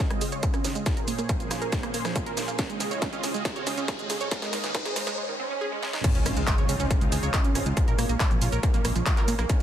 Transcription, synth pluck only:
0.11 0.13 G#3 medium
0.22 0.24 G#4 medium
0.32 0.35 C#5 loud
0.43 0.50 C#4 medium
0.54 0.58 C#4 loud
0.65 0.67 C#4 medium
0.75 0.78 G#3 medium
0.86 0.89 F4 medium
0.97 1.00 A#4 loud
1.08 1.14 A#3 medium
1.18 1.23 A#3 loud
1.40 1.43 F3 medium
1.51 1.54 F4 medium
1.62 1.64 A#4 loud
1.72 1.79 A#3 medium
1.83 1.88 A#3 loud
1.94 1.97 A#3 medium
2.05 2.08 F3 medium
2.16 2.18 F4 medium
2.26 2.29 A#4 loud
2.37 2.44 A#3 medium
2.48 2.52 A#3 loud
2.59 2.62 C#4 medium
2.70 2.72 G#3 medium
2.80 2.83 G#4 medium
2.91 2.94 C#5 loud
3.02 3.09 C#4 medium
3.13 3.17 C#4 loud
3.24 3.26 C#4 medium
3.34 3.37 G#3 medium
3.45 3.48 G#4 medium
3.56 3.59 C#5 loud
3.67 3.73 C#4 medium
3.78 3.82 C#4 loud
3.88 3.91 C#4 medium
3.99 4.02 G#3 medium
4.10 4.13 G#4 medium
4.21 4.23 C#5 loud
4.32 4.38 G#3 medium
4.42 4.47 G#3 loud
4.53 4.56 G#3 medium
4.64 4.67 D#3 medium
4.75 4.77 D#4 medium
4.85 4.88 G#4 loud
4.96 5.03 G#3 medium
5.07 5.12 G#3 loud
5.18 5.21 G#3 medium
5.29 5.31 D#3 medium
5.40 5.42 C4 medium
5.50 5.55 C#4 medium
5.61 5.66 G#4 loud
5.72 5.76 G#3 medium
5.83 5.87 G#3 medium
5.94 5.98 D#3 medium
6.04 6.11 C#4 medium
6.15 6.19 C#4 loud
6.26 6.29 C#4 medium
6.37 6.39 G#3 medium
6.48 6.50 G#4 medium
6.58 6.61 C#5 loud
6.69 6.76 C#4 medium
6.80 6.84 C#4 loud
6.91 6.93 C#4 medium
7.01 7.04 G#3 medium
7.12 7.15 G#4 medium
7.23 7.26 C#5 loud
7.34 7.40 C#4 medium
7.45 7.49 C#4 loud
7.55 7.58 C#4 medium
7.66 7.69 G#3 medium
7.77 7.80 F4 medium
7.88 7.90 A#4 loud
7.99 8.05 A#3 medium
8.09 8.14 A#3 loud
8.20 8.23 A#3 medium
8.31 8.34 F3 medium
8.42 8.44 F4 medium
8.53 8.55 A#4 loud
8.63 8.70 A#3 medium
8.74 8.78 A#3 loud
8.85 8.87 A#3 medium
8.96 8.98 F3 medium
9.06 9.09 F4 medium
9.17 9.20 A#4 loud
9.28 9.35 A#3 medium
9.39 9.43 A#3 loud
9.50 9.52 C#4 medium

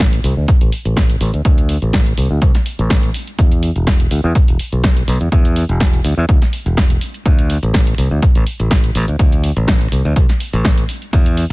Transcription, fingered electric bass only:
0.00 0.19 A1 medium
0.24 0.33 C2 medium
0.37 0.45 D2 medium
0.48 muted fingered electric bass stroke soft
0.61 0.69 A1 medium
0.85 1.15 A1 medium
1.21 1.30 A1 loud
1.34 1.42 D2 medium
1.45 1.76 D2 medium
1.82 2.12 A1 medium
2.18 2.27 C2 medium
2.31 2.38 D2 loud
2.79 3.09 A1 medium
3.39 3.69 E2 medium
3.76 4.06 E1 loud
4.11 4.20 D2 medium
4.24 4.32 E2 loud
4.48 4.56 E1 loud
4.72 5.02 B1 medium
5.08 5.17 B1 medium
5.21 5.29 E2 medium
5.32 5.63 E2 medium
5.69 5.99 E1 loud
6.04 6.14 D2 medium
6.17 6.25 E2 medium
6.66 6.96 E1 medium
7.26 7.56 D2 medium
7.63 7.93 A1 loud
7.98 8.07 C2 medium
8.11 8.19 D2 medium
8.36 8.43 A1 loud
8.60 8.90 A1 medium
8.95 9.04 A1 loud
9.08 9.16 D2 medium
9.57 9.86 A1 loud
9.92 10.01 C2 medium
10.05 10.13 D2 loud
10.53 10.83 A1 medium
11.13 11.44 E2 loud

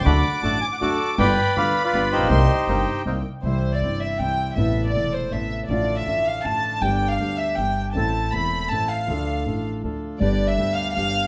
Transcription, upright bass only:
0.01 0.05 C#2 medium
0.06 0.21 D2 loud
0.43 0.59 A1 medium
0.82 0.97 D2 medium
1.18 1.34 G1 medium
1.56 1.71 D2 soft
1.93 2.09 G1 medium
2.17 2.20 A1 soft
2.21 2.24 A#1 medium
2.21 2.29 B1 medium
2.30 2.46 C2 medium
2.67 2.83 G1 soft
3.05 3.22 C2 medium
3.43 3.80 C2 medium
3.81 4.17 G1 soft
4.19 4.55 C2 soft
4.56 4.92 A1 medium
4.94 5.30 E1 soft
5.31 5.67 A1 soft
5.69 6.05 A1 medium
6.07 6.42 A1 soft
6.45 6.80 A1 soft
6.82 7.17 G1 medium
7.19 7.55 D2 soft
7.57 7.93 G1 soft
7.96 8.31 A1 medium
8.33 8.69 E1 soft
8.71 9.07 A1 soft
9.08 9.44 D2 medium
9.46 9.82 A1 soft
9.84 10.19 D2 soft
10.21 10.57 G1 medium
10.59 10.94 D2 soft
10.96 11.27 G1 soft

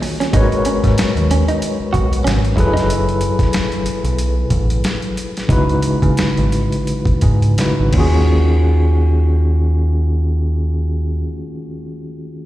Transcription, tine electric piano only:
0.00 0.29 D#3 medium
0.00 0.29 A#3 medium
0.00 0.29 F4 medium
0.00 0.30 F#4 medium
0.00 0.30 G#4 medium
0.00 0.31 C#5 medium
0.33 2.52 G#3 medium
0.33 2.53 F#4 medium
0.33 2.53 A#4 medium
0.33 2.54 B4 medium
0.33 2.54 C#5 medium
2.56 5.11 F#3 medium
2.56 5.12 E4 medium
2.56 5.12 G#4 medium
2.56 5.13 A4 medium
2.56 5.13 B4 medium
5.48 7.54 C#3 medium
5.48 7.54 G#3 medium
5.48 7.54 D#4 medium
5.48 7.55 E4 medium
5.48 7.55 F#4 medium
5.52 7.56 B4 medium
7.58 7.95 C#3 soft
7.58 7.95 G#3 soft
7.58 7.95 D#4 soft
7.58 7.95 E4 soft
7.58 7.95 F#4 soft
7.58 7.96 B4 soft
7.92 11.21 D#3 medium
7.92 11.23 A#3 medium
7.92 11.24 C#4 medium
7.97 11.25 F4 medium
7.97 11.27 F#4 medium
7.97 11.29 G#4 medium

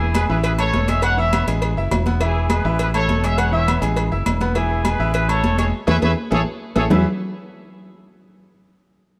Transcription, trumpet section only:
0.00 0.13 E4 medium
0.00 0.13 G#4 loud
0.15 0.22 G#4 medium
0.15 0.22 B4 medium
0.29 0.37 G#4 medium
0.29 0.36 B4 medium
0.44 0.51 G#4 medium
0.44 0.51 B4 loud
0.59 0.86 A4 medium
0.59 0.86 C#5 loud
0.88 1.03 C#5 medium
0.88 1.03 E5 loud
1.04 1.17 C#5 medium
1.04 1.17 F#5 loud
1.19 1.48 C#5 medium
1.19 1.48 E5 loud
2.22 2.49 E4 medium
2.22 2.48 G#4 medium
2.51 2.80 G#4 medium
2.51 2.78 B4 medium
2.80 2.87 G#4 medium
2.80 2.86 B4 loud
2.95 3.22 A4 medium
2.95 3.22 C#5 loud
3.24 3.38 C#5 medium
3.24 3.39 E5 loud
3.38 3.53 C#5 medium
3.38 3.53 F#5 loud
3.52 3.81 C#5 medium
3.52 3.80 E5 loud
4.57 4.84 E4 medium
4.57 4.84 G#4 medium
4.85 5.14 G#4 medium
4.85 5.13 B4 medium
5.14 5.28 G#4 medium
5.14 5.28 B4 loud
5.28 5.59 A4 medium
5.28 5.58 C#5 loud
5.59 5.67 A4 medium
5.59 5.65 C#5 medium
5.88 5.95 B4 loud
5.88 5.95 C#5 loud
5.88 5.95 E5 loud
6.03 6.10 B4 loud
6.03 6.10 C#5 loud
6.03 6.10 E5 loud
6.32 6.39 G#4 loud
6.32 6.39 A4 loud
6.32 6.39 C#5 loud
6.76 6.83 G#4 medium
6.76 6.83 A4 medium
6.76 6.84 C#5 medium
6.91 7.04 E5 medium

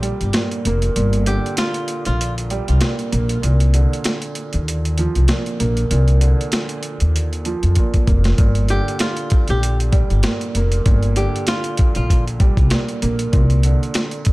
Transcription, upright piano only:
0.00 0.33 A#2 medium
0.00 1.25 D3 medium
0.00 2.49 G3 medium
0.34 0.94 A#2 medium
0.67 3.11 A#3 medium
0.96 2.80 A#2 medium
1.27 3.43 D3 medium
2.51 3.44 G3 medium
2.82 3.41 A#2 medium
3.12 3.43 A#3 medium
3.42 5.28 A#2 medium
3.74 6.20 D3 medium
4.99 7.44 F3 medium
5.29 5.90 A#2 medium
5.60 8.06 A#3 medium
5.91 7.77 A#2 medium
6.21 8.38 D3 medium
7.46 8.39 F3 medium
7.78 8.38 A#2 medium
8.07 8.38 A#3 medium
8.39 10.22 A#2 medium
8.70 11.15 D3 medium
9.92 12.39 G3 medium
10.24 10.84 A#2 medium
10.57 13.01 A#3 medium
10.86 12.70 A#2 medium
11.16 13.33 D3 medium
12.40 13.33 G3 medium
12.72 13.31 A#2 medium
13.02 13.33 A#3 medium
13.32 14.33 A#2 medium
13.64 14.33 D3 medium

